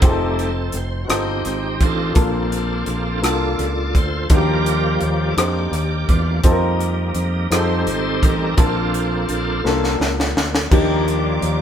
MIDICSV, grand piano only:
0, 0, Header, 1, 2, 480
1, 0, Start_track
1, 0, Key_signature, -2, "major"
1, 0, Tempo, 712589
1, 15, Time_signature, 6, 3, 24, 8
1, 7823, End_track
2, 0, Start_track
2, 0, Title_t, "Grand piano"
2, 0, Program_c, 0, 0
2, 0, Control_c, 0, 64, 127
2, 11, Note_on_c, 0, 60, 65
2, 14, Note_on_c, 0, 63, 60
2, 17, Note_on_c, 0, 65, 54
2, 19, Note_on_c, 0, 68, 54
2, 25, Control_c, 0, 64, 0
2, 61, Note_off_c, 0, 68, 0
2, 65, Note_on_c, 0, 69, 74
2, 158, Control_c, 0, 64, 127
2, 576, Note_off_c, 0, 60, 0
2, 577, Note_off_c, 0, 63, 0
2, 579, Note_off_c, 0, 65, 0
2, 603, Note_off_c, 0, 69, 0
2, 725, Note_on_c, 0, 60, 53
2, 727, Note_on_c, 0, 63, 48
2, 730, Note_on_c, 0, 65, 46
2, 734, Note_on_c, 0, 69, 57
2, 1293, Note_off_c, 0, 60, 0
2, 1294, Note_off_c, 0, 63, 0
2, 1296, Note_off_c, 0, 65, 0
2, 1298, Note_off_c, 0, 69, 0
2, 1444, Note_on_c, 0, 58, 60
2, 1449, Note_on_c, 0, 62, 56
2, 1451, Note_on_c, 0, 46, 52
2, 1452, Note_on_c, 0, 65, 53
2, 1456, Note_on_c, 0, 69, 63
2, 1467, Control_c, 0, 64, 0
2, 1579, Control_c, 0, 64, 127
2, 2013, Note_off_c, 0, 58, 0
2, 2016, Note_off_c, 0, 62, 0
2, 2017, Note_off_c, 0, 65, 0
2, 2019, Note_off_c, 0, 69, 0
2, 2148, Note_off_c, 0, 46, 0
2, 2169, Note_on_c, 0, 58, 54
2, 2172, Note_on_c, 0, 62, 53
2, 2177, Note_on_c, 0, 65, 49
2, 2179, Note_on_c, 0, 69, 60
2, 2736, Note_off_c, 0, 58, 0
2, 2737, Note_off_c, 0, 62, 0
2, 2740, Note_off_c, 0, 65, 0
2, 2741, Note_off_c, 0, 69, 0
2, 2894, Note_on_c, 0, 62, 58
2, 2896, Note_on_c, 0, 51, 49
2, 2896, Note_on_c, 0, 63, 58
2, 2897, Note_on_c, 0, 66, 44
2, 2902, Note_on_c, 0, 70, 63
2, 2906, Control_c, 0, 64, 0
2, 2942, Note_off_c, 0, 66, 0
2, 2944, Note_on_c, 0, 67, 56
2, 3033, Control_c, 0, 64, 127
2, 3459, Note_off_c, 0, 62, 0
2, 3459, Note_off_c, 0, 63, 0
2, 3462, Note_off_c, 0, 70, 0
2, 3484, Note_off_c, 0, 67, 0
2, 3591, Note_off_c, 0, 51, 0
2, 3616, Note_on_c, 0, 62, 57
2, 3618, Note_on_c, 0, 63, 49
2, 3621, Note_on_c, 0, 67, 50
2, 3627, Note_on_c, 0, 72, 61
2, 4179, Note_off_c, 0, 62, 0
2, 4180, Note_off_c, 0, 63, 0
2, 4182, Note_off_c, 0, 67, 0
2, 4185, Note_off_c, 0, 72, 0
2, 4334, Note_on_c, 0, 60, 77
2, 4339, Note_on_c, 0, 63, 70
2, 4342, Note_on_c, 0, 65, 70
2, 4348, Note_on_c, 0, 69, 68
2, 4349, Control_c, 0, 64, 0
2, 4387, Note_off_c, 0, 69, 0
2, 4389, Note_on_c, 0, 70, 89
2, 4485, Control_c, 0, 64, 127
2, 4899, Note_off_c, 0, 60, 0
2, 4901, Note_off_c, 0, 63, 0
2, 4902, Note_off_c, 0, 65, 0
2, 4926, Note_off_c, 0, 70, 0
2, 5055, Note_on_c, 0, 60, 50
2, 5059, Note_on_c, 0, 63, 51
2, 5062, Note_on_c, 0, 65, 47
2, 5065, Note_on_c, 0, 68, 52
2, 5068, Control_c, 0, 64, 0
2, 5106, Note_off_c, 0, 68, 0
2, 5107, Note_on_c, 0, 69, 61
2, 5202, Control_c, 0, 64, 127
2, 5619, Note_off_c, 0, 60, 0
2, 5621, Note_off_c, 0, 63, 0
2, 5622, Note_off_c, 0, 65, 0
2, 5645, Note_off_c, 0, 69, 0
2, 5772, Note_on_c, 0, 58, 66
2, 5776, Note_on_c, 0, 62, 62
2, 5780, Note_on_c, 0, 46, 45
2, 5780, Note_on_c, 0, 65, 57
2, 5782, Note_on_c, 0, 69, 68
2, 5787, Control_c, 0, 64, 0
2, 5912, Control_c, 0, 64, 127
2, 6337, Note_off_c, 0, 58, 0
2, 6339, Note_off_c, 0, 62, 0
2, 6341, Note_off_c, 0, 65, 0
2, 6342, Note_off_c, 0, 69, 0
2, 6472, Note_off_c, 0, 46, 0
2, 6494, Note_on_c, 0, 58, 65
2, 6497, Note_on_c, 0, 62, 58
2, 6501, Note_on_c, 0, 65, 53
2, 6506, Note_on_c, 0, 69, 68
2, 7058, Note_off_c, 0, 58, 0
2, 7059, Note_off_c, 0, 62, 0
2, 7061, Note_off_c, 0, 65, 0
2, 7064, Note_off_c, 0, 69, 0
2, 7215, Note_on_c, 0, 58, 74
2, 7217, Note_on_c, 0, 62, 62
2, 7221, Note_on_c, 0, 51, 57
2, 7222, Note_on_c, 0, 63, 64
2, 7225, Note_on_c, 0, 67, 80
2, 7228, Control_c, 0, 64, 0
2, 7355, Control_c, 0, 64, 127
2, 7778, Note_off_c, 0, 58, 0
2, 7779, Note_off_c, 0, 62, 0
2, 7782, Note_off_c, 0, 63, 0
2, 7783, Note_off_c, 0, 67, 0
2, 7823, Note_off_c, 0, 51, 0
2, 7823, End_track
0, 0, End_of_file